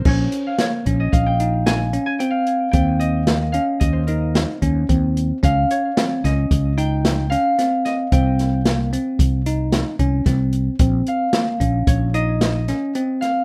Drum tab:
CC |x---------|----------|----------|----------|
HH |-xxxxxxxxx|xxxxxxxxxx|xxxxxxxxxx|xxxxxxxxxx|
SD |--o---o---|--o---o---|--oo--o-oo|-oo---o-o-|
BD |o--oo-----|o---o--oo-|o--oo-----|o---o--oo-|

CC |----------|
HH |xxxxxxxxxx|
SD |--o---oo-o|
BD |o--oo-----|